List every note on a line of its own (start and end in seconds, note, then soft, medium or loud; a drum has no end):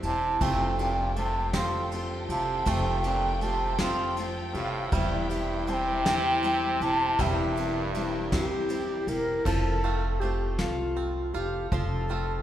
0.00 0.39 E1 medium
0.00 0.41 C3 medium
0.00 0.41 G3 medium
0.00 0.69 C4 medium
0.00 0.40 G4 soft
0.00 0.44 A5 medium
0.00 ride medium
0.04 0.40 C4 soft
0.04 0.41 E4 soft
0.40 1.50 F1 medium
0.40 0.77 C3 medium
0.40 0.78 F3 medium
0.40 0.79 A3 medium
0.40 2.66 A3 medium
0.40 0.79 C4 medium
0.40 4.89 F4 medium
0.40 0.79 F4 medium
0.40 0.78 G4 medium
0.40 4.89 A4 medium
0.40 9.42 G5 medium
0.40 0.79 G5 medium
0.40 kick medium
0.40 ride medium
0.78 1.13 A#2 medium
0.78 1.17 C4 soft
0.78 1.17 F4 soft
0.78 1.16 G4 soft
0.78 1.15 G5 medium
0.78 ride medium
1.15 1.51 C3 medium
1.15 1.54 A3 medium
1.15 1.54 C4 medium
1.15 1.54 F4 medium
1.15 1.52 A5 medium
1.15 ride soft
1.19 1.53 G4 medium
1.53 2.25 F2 medium
1.53 1.89 F3 medium
1.53 1.93 F3 medium
1.53 1.90 A3 medium
1.53 3.79 C4 medium
1.53 1.92 C4 medium
1.53 1.92 F4 medium
1.53 1.92 G4 medium
1.53 1.89 C6 medium
1.53 snare medium
1.53 ride medium
1.92 2.29 A3 medium
1.92 2.30 C4 medium
1.92 2.30 F4 medium
1.92 2.29 G4 medium
1.92 ride soft
2.29 2.65 F1 medium
2.29 2.68 C3 medium
2.29 2.66 C4 soft
2.29 2.66 F4 soft
2.29 2.67 G4 soft
2.29 2.70 A5 medium
2.29 ride medium
2.66 3.76 F1 medium
2.66 3.04 C3 medium
2.66 3.04 F3 medium
2.66 3.04 A3 medium
2.66 4.92 A3 medium
2.66 3.05 C4 medium
2.66 3.04 F4 medium
2.66 3.02 G4 medium
2.66 3.06 G5 medium
2.66 kick medium
2.66 ride medium
3.04 3.35 A#2 medium
3.04 3.41 C4 soft
3.04 3.42 F4 soft
3.04 3.42 G4 medium
3.04 3.35 G5 medium
3.04 ride medium
3.35 3.46 A#2 medium
3.35 3.44 G5 medium
3.41 3.79 C3 medium
3.41 3.79 A3 medium
3.41 3.79 C4 medium
3.41 3.78 F4 medium
3.41 3.78 G4 medium
3.41 3.80 A5 medium
3.41 ride soft
3.79 4.51 F2 medium
3.79 4.15 F3 medium
3.79 4.18 F3 medium
3.79 4.16 A3 medium
3.79 5.20 C4 medium
3.79 4.18 C4 medium
3.79 4.17 F4 medium
3.79 4.17 G4 medium
3.79 4.16 C6 medium
3.79 snare medium
3.79 ride medium
4.17 4.55 A3 medium
4.17 4.56 C4 medium
4.17 4.56 F4 medium
4.17 4.54 G4 medium
4.17 ride soft
4.53 4.91 F1 medium
4.53 4.89 A2 medium
4.53 4.94 F4 soft
4.53 4.93 G4 medium
4.53 4.90 F5 medium
4.53 ride soft
4.58 4.93 C4 soft
4.92 6.02 E1 medium
4.92 5.28 G2 medium
4.92 5.31 E3 medium
4.92 7.18 G3 medium
4.92 5.31 G3 medium
4.92 5.31 C4 medium
4.92 9.42 E4 medium
4.92 5.31 E4 medium
4.92 5.29 G4 medium
4.92 7.17 C5 medium
4.92 5.28 E5 medium
4.92 kick medium
4.92 ride medium
5.30 5.70 G2 medium
5.30 5.67 C4 soft
5.30 5.68 E4 soft
5.30 5.68 G4 medium
5.30 5.70 E5 medium
5.30 ride soft
5.67 6.83 C3 loud
5.67 6.05 G3 medium
5.67 6.06 C4 medium
5.67 6.06 E4 medium
5.67 6.04 G4 medium
5.67 5.74 A5 medium
5.67 ride medium
5.73 6.83 G5 loud
6.05 6.77 E2 medium
6.05 6.45 E3 medium
6.05 6.42 G3 medium
6.05 8.31 C4 medium
6.05 6.43 C4 medium
6.05 6.44 E4 medium
6.05 6.44 G4 medium
6.05 snare loud
6.05 ride medium
6.43 6.81 G3 medium
6.43 6.82 C4 medium
6.43 6.81 E4 medium
6.43 6.80 G4 medium
6.43 ride soft
6.81 7.17 E1 medium
6.81 7.23 C3 medium
6.81 7.19 C4 soft
6.81 7.20 E4 soft
6.81 7.19 G4 soft
6.81 7.23 A5 loud
6.81 ride medium
7.19 8.28 E1 loud
7.19 8.71 G2 medium
7.19 7.57 E3 medium
7.19 9.46 G3 medium
7.19 7.57 G3 medium
7.19 7.57 C4 medium
7.19 7.56 E4 medium
7.19 7.55 G4 medium
7.19 9.44 A#4 medium
7.19 8.05 E5 medium
7.19 kick medium
7.19 ride medium
7.56 7.95 C4 soft
7.56 7.95 E4 soft
7.56 7.94 G4 medium
7.56 ride medium
7.95 8.32 G3 medium
7.95 8.32 C4 medium
7.95 8.32 E4 medium
7.95 8.31 G4 medium
7.95 ride medium
8.32 9.04 E2 medium
8.32 8.71 E3 medium
8.32 8.68 G3 medium
8.32 9.53 C4 medium
8.32 8.69 C4 medium
8.32 8.70 E4 medium
8.32 8.70 G4 medium
8.32 9.10 G4 medium
8.32 kick medium
8.32 snare medium
8.32 ride medium
8.69 9.07 G3 medium
8.69 9.08 C4 medium
8.69 9.08 E4 medium
8.69 9.07 G4 medium
8.69 ride medium
9.07 9.43 E1 medium
9.07 9.45 C4 soft
9.07 9.47 E4 soft
9.07 9.46 G4 medium
9.07 9.46 A#4 loud
9.07 ride medium
9.45 10.55 F1 loud
9.45 11.71 F3 medium
9.45 10.20 F3 medium
9.45 10.21 C4 medium
9.45 10.22 F4 medium
9.45 10.21 A4 loud
9.45 10.22 A4 medium
9.45 kick medium
9.45 crash medium
9.83 10.20 A3 soft
9.83 10.95 C4 soft
9.83 11.33 F4 soft
9.83 closed hi-hat soft
10.20 10.59 F3 soft
10.20 12.09 A3 medium
10.20 10.59 C4 medium
10.20 10.59 F4 medium
10.20 10.59 G4 medium
10.20 closed hi-hat soft
10.25 10.58 A4 medium
10.58 11.31 C2 medium
10.58 11.35 F3 soft
10.58 11.35 C4 soft
10.58 11.35 F4 medium
10.58 11.34 F4 medium
10.58 11.33 A4 medium
10.58 snare medium
10.58 closed hi-hat medium
10.96 12.09 C4 soft
10.96 closed hi-hat soft
11.33 11.70 F1 medium
11.33 11.72 C4 soft
11.33 12.10 F4 medium
11.33 11.73 F4 soft
11.33 11.70 G4 medium
11.33 11.72 A4 soft
11.33 closed hi-hat soft
11.71 12.42 F1 medium
11.71 12.42 F3 medium
11.71 12.42 C4 medium
11.71 12.42 F4 medium
11.71 12.42 A4 medium
11.71 kick medium
11.71 closed hi-hat medium
12.09 12.42 A3 soft
12.09 12.42 C4 soft
12.09 12.42 F4 medium
12.09 closed hi-hat soft